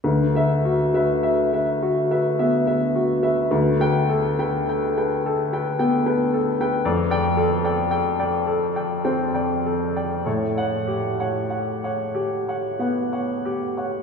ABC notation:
X:1
M:3/4
L:1/16
Q:1/4=52
K:D
V:1 name="Grand piano"
B [Be] F [Be] e [Be] F [Be] e [Be] F [Be] | B [Bg] A [Bg] g [Bg] A [Bg] g [Bg] A [Bg] | d [dg] A [dg] g [dg] A [dg] g [dg] A [dg] | c [cf] G [cf] f [cf] G [cf] f [cf] G [cf] |]
V:2 name="Grand piano" clef=bass
D,,8 B,2 z2 | D,,8 B,2 z2 | =F,,8 =C2 z2 | A,,8 B,2 z2 |]